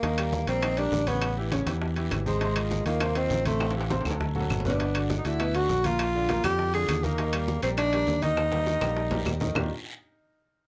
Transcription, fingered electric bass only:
\new Staff \with { instrumentName = "Fingered electric bass" } { \clef bass \time 4/4 \key ees \major \tempo 4 = 202 ees,4. bes,,4. a,,4~ | a,,4. e,4. aes,,4~ | aes,,4. ees,4. a,,4~ | a,,4. d,4. g,,4~ |
g,,4. d,4. bes,,4~ | bes,,4. f,4. ees,4~ | ees,4. bes,,4. ees,4~ | ees,4. bes,,4. ees,4 |
ees,8 r2. r8 | }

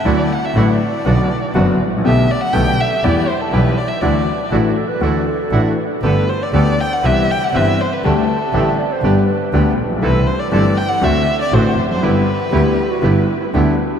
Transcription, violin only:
\new Staff \with { instrumentName = "Violin" } { \time 4/4 \key g \major \tempo 4 = 120 d''8 fis''16 e''16 d''2~ d''8 r8 | e''8 d''16 fis''16 g''8 e''8 d''8 c''16 a'16 b'8 d''16 e''16 | d''4 r2. | b'8 c''16 d''16 d''8 g''16 fis''16 e''8 g''16 fis''16 e''8 c''16 b'16 |
a'2 r2 | b'8 c''16 d''16 d''8 g''16 fis''16 e''8. d''16 c''8. c''16 | b'2. r4 | }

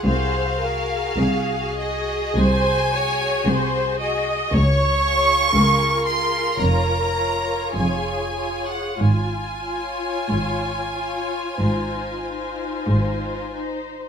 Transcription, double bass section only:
\new Staff \with { instrumentName = "Double bass section" } { \clef bass \time 4/4 \key des \major \tempo 4 = 52 c,4 c,4 c,4 c,4 | des,4 des,4 f,,4 f,,4 | aes,,4 aes,,4 aes,,4 aes,,4 | }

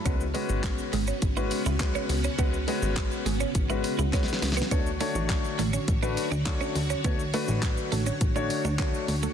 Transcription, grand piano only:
\new Staff \with { instrumentName = "Grand piano" } { \time 4/4 \key cis \phrygian \tempo 4 = 103 <gis cis' fis' b'>16 r16 <gis cis' fis' b'>4 r8. <gis cis' fis' b'>8 r16 <gis cis' fis' b'>8 r8 | <gis cis' fis' b'>16 r16 <gis cis' fis' b'>4 r8. <gis cis' fis' b'>8 r16 <gis cis' fis' b'>8 r8 | <a d' fis' cis''>16 r16 <a d' fis' cis''>4 r8. <a d' fis' b'>8 r16 <a d' fis' cis''>8 r8 | <a d' fis' cis''>16 r16 <a d' fis' b'>4 r8. <a d' fis' cis''>8 r16 <a d' fis' cis''>8 r8 | }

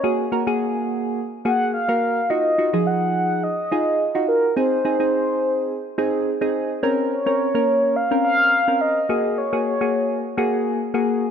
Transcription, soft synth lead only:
\new Staff \with { instrumentName = "Soft synth lead" } { \time 4/4 \key bes \minor \tempo 4 = 106 des''8 r2 ges''8 f''4 | ees''4 ges''4 ees''4. bes'8 | c''2. r4 | r8 des''4. f''8 f''4 ees''8~ |
ees''8 des''8 des''4 r2 | }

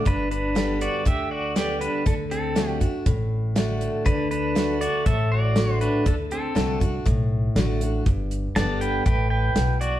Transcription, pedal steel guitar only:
\new Staff \with { instrumentName = "Pedal steel guitar" } { \time 4/4 \key g \major \tempo 4 = 120 <d' b'>8 <d' b'>4 <fis' d''>8 <g' e''>8 <fis' d''>8 <g' d''>8 <d' b'>8 | <d' a'>8 <c' a'>4 r2 r8 | <d' b'>8 <d' b'>4 <fis' d''>8 <a' e''>8 <fis' d''>4 <d' b'>8 | <d' a'>8 <c' a'>4 r2 r8 |
r4 <d'' a''>8 <b' g''>8 <b' g''>8 <b' g''>4 <fis' d''>8 | }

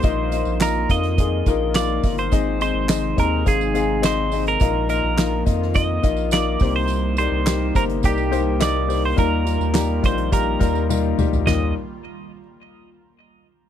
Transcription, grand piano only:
<<
  \new Staff \with { instrumentName = "Grand piano" } { \time 4/4 \key ees \major \tempo 4 = 105 <bes ees' f' ees''>8 <bes ees' f' ees''>8 <bes ees' f' ees''>8 <bes ees' f' f''>8 <bes ees' f' aes'>8 <bes ees' f' bes'>8 <bes ees' f' f''>8 <bes ees' f' ees''>8 | <c' ees' aes' ees''>8 <c' ees' aes' ees''>8 <c' ees' aes' ees''>8 <c' ees' aes' ees''>8 <c' ees' aes' f''>8 <c' ees' aes' f''>8 <c' ees' aes' ees''>8 <c' ees' aes' ees''>8 | <bes ees' f' ees''>8 <bes ees' f' ees''>8 <bes ees' f' ees''>8 <bes ees' f' ees''>8 <bes ees' f' ees''>8 <bes ees' f' ees''>8 <bes ees' f' ees''>8 <bes ees' g' c''>8~ | <bes ees' g' c''>8 <bes ees' g' d''>8 <bes ees' g' bes'>8 <bes ees' g' c''>8 <bes ees' g' d''>8 <bes ees' g' c''>8 <bes ees' g' ees''>8 <bes ees' g' c''>8 |
<g ees' f' bes'>8 <g ees' f' bes'>8 <g ees' f' g'>8 <g ees' f' bes'>8 <g ees' f' g'>8 <g ees' f' bes'>8 <g ees' f' bes'>8 <g ees' f' g'>8 | <g ees' f' bes'>8 r2. r8 | }
  \new Staff \with { instrumentName = "Grand piano" } { \clef bass \time 4/4 \key ees \major bes,4. r2 r8 | aes,4. r2 r8 | bes,4. r2 c8~ | c4 r2. |
ees4. r2 r8 | ees,8 r2. r8 | }
>>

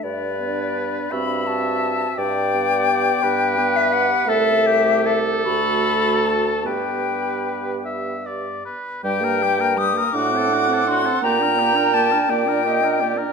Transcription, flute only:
\new Staff \with { instrumentName = "Flute" } { \time 6/8 \key g \major \tempo 4. = 55 d''4. b''8 a''4 | g''2~ g''16 e''16 fis''8 | e''4. b''4 a''8 | g''4. r4. |
\key g \minor g''4 ees'''8 d'''4 c'''8 | bes''4 a''8 g''4. | }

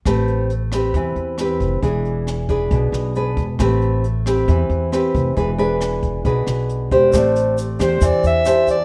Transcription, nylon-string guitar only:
\new Staff \with { instrumentName = "Nylon-string guitar" } { \time 4/4 \key a \minor \tempo 4 = 136 << { <c' g' b'>4 r8 <c' g' b'>4. <c' g' b'>4 | <d' gis' b'>4. <d' gis' b'>4. <d' gis' b'>8 r8 | <c' g' b'>4 r8 <c' g' b'>4. <c' g' b'>4 | <d' gis' b'>8 <d' gis' b'>4. <d' gis' b'>4. <d' g' c''>8~ |
<d' g' c''>4 r8 <d' g' c''>4. <d' g' c''>8 r8 | } \\ { a2 e2 | e2 b,2 | a2 e2 | e2 b,2 |
a2 e2 | } >> }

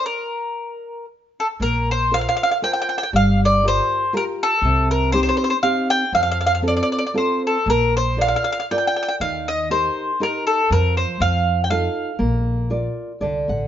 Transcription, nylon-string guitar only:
\new Staff \with { instrumentName = "Nylon-string guitar" } { \time 3/4 \key bes \major \tempo 4 = 118 << { r2. | r2. | r2. | r2. |
r2. | r2. | r2. | r2. |
r2 d''8 fis''8 | } \\ { r2. | bes4 <f' bes' c''>4 <f' bes' c''>4 | g4 <f' g' bes'>4 <f' g' bes'>4 | c4 <c' ees' g'>4 <c' ees' g'>4 |
f4 <c' f' a'>4 <c' f' a'>4 | bes4 <f' bes' d''>4 <f' bes' d''>4 | ees4 <ees' g' bes'>4 <ees' g' bes'>4 | f4 f4 <ees' f' a'>4 |
bes4 <f' bes' d''>4 d4 | } >> }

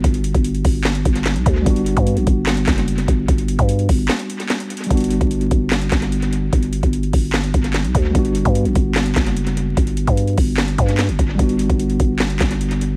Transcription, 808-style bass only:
\new Staff \with { instrumentName = "808-style bass" } { \clef bass \time 4/4 \key g \major \tempo 4 = 148 g,,8. g,,8. g,,4 g,,8. b,,16 d,8 | g,,8. g,8 a,,16 g,,4 fis,,4 g,,8 | g,,8. g,8. g,,8 r2 | g,,8. g,,8. g,,4 g,,4. |
g,,8. g,,8. g,,4 g,,8. b,,16 d,8 | g,,8. g,8 a,,16 g,,4 fis,,4. | g,,8. g,8. g,,4 g,8. fis,,16 g,,8 | g,,8. g,,8. g,,4 g,,4. | }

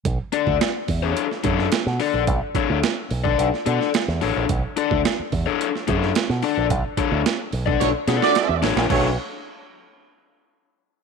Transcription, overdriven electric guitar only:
\new Staff \with { instrumentName = "Overdriven electric guitar" } { \time 4/4 \key b \minor \tempo 4 = 108 r8 <d' a' d''>8 r8. <d' a' cis''>8 r16 <d' a' cis''>8 r8 <d' a' d''>8 | r8 <d' a' cis''>8 r8. <d' a' d''>8 r16 <d' a' d''>8 r8 <d' a' cis''>8 | r8 <d' a' d''>8 r8. <d' a' cis''>8 r16 <d' a' cis''>8 r8 <d' a' d''>8 | r8 <d' a' cis''>8 r8. <d' a' d''>8 r16 <d' a' d''>8 r8 <d' a' cis''>8 |
<d' a' cis''>16 r2. r8. | }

